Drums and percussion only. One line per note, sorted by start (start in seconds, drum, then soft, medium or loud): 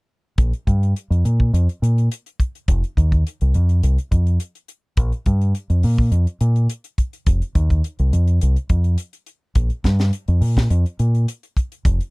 0.38 kick medium
0.38 closed hi-hat medium
0.53 closed hi-hat soft
0.67 kick medium
0.67 closed hi-hat soft
0.83 closed hi-hat soft
0.96 closed hi-hat medium
1.12 closed hi-hat soft
1.25 closed hi-hat soft
1.40 kick medium
1.54 closed hi-hat medium
1.69 closed hi-hat soft
1.83 closed hi-hat soft
1.98 closed hi-hat soft
2.11 closed hi-hat medium
2.26 closed hi-hat soft
2.40 kick medium
2.40 closed hi-hat soft
2.55 closed hi-hat soft
2.68 kick medium
2.68 closed hi-hat medium
2.84 closed hi-hat soft
2.97 kick medium
2.97 closed hi-hat soft
3.12 kick medium
3.12 closed hi-hat soft
3.27 closed hi-hat medium
3.41 closed hi-hat soft
3.54 closed hi-hat soft
3.69 closed hi-hat soft
3.83 closed hi-hat medium
3.98 closed hi-hat soft
4.12 kick medium
4.12 closed hi-hat soft
4.27 closed hi-hat soft
4.40 closed hi-hat medium
4.55 closed hi-hat soft
4.68 closed hi-hat soft
4.97 kick medium
4.97 closed hi-hat medium
5.12 closed hi-hat soft
5.26 kick medium
5.26 closed hi-hat soft
5.41 closed hi-hat soft
5.55 closed hi-hat medium
5.70 closed hi-hat soft
5.83 open hi-hat medium
5.98 kick medium
6.12 closed hi-hat medium
6.27 closed hi-hat soft
6.41 closed hi-hat soft
6.56 closed hi-hat soft
6.69 closed hi-hat medium
6.84 closed hi-hat soft
6.98 kick medium
6.98 closed hi-hat soft
7.13 closed hi-hat soft
7.26 kick medium
7.26 closed hi-hat medium
7.42 closed hi-hat soft
7.55 kick medium
7.55 closed hi-hat soft
7.70 kick medium
7.70 closed hi-hat soft
7.84 closed hi-hat medium
7.99 closed hi-hat soft
8.13 closed hi-hat soft
8.28 closed hi-hat soft
8.41 closed hi-hat medium
8.56 closed hi-hat soft
8.70 kick medium
8.70 closed hi-hat soft
8.84 closed hi-hat soft
8.98 closed hi-hat medium
9.13 closed hi-hat soft
9.26 closed hi-hat soft
9.55 kick medium
9.55 closed hi-hat medium
9.70 closed hi-hat soft
9.84 kick medium
9.84 snare medium
9.84 closed hi-hat soft
9.99 snare medium
9.99 closed hi-hat soft
10.13 closed hi-hat medium
10.28 closed hi-hat soft
10.42 open hi-hat medium
10.57 kick medium
10.57 snare medium
10.70 closed hi-hat medium
10.86 closed hi-hat soft
10.99 closed hi-hat soft
11.15 closed hi-hat soft
11.28 closed hi-hat medium
11.43 closed hi-hat soft
11.57 kick medium
11.57 closed hi-hat soft
11.72 closed hi-hat soft
11.85 kick medium
11.85 closed hi-hat medium
12.01 closed hi-hat soft